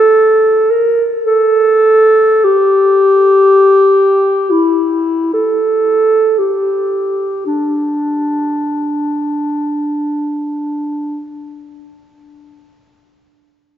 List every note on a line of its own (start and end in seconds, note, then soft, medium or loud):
0.00 0.72 A4 medium
0.70 1.07 A#4 medium
1.25 2.46 A4 medium
2.44 4.52 G4 medium
4.50 5.33 E4 medium
5.33 6.40 A4 medium
6.38 7.44 G4 soft
7.46 11.30 D4 soft